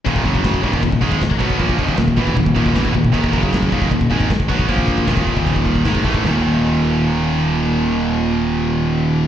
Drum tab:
CC |x---x---x---x---|x---x---x---x---|x---x---x---x---|x---x---x---x---|
SD |----o-------o---|----o-------o---|----o-------o---|----o-------o---|
FT |----------------|----------------|----------------|----------------|
BD |oooooooooooooooo|oooooooooooooooo|oooooooooooooooo|oooooooooooooooo|

CC |----------------|----------------|
SD |o---------------|----------------|
FT |o---------------|----------------|
BD |----------------|----------------|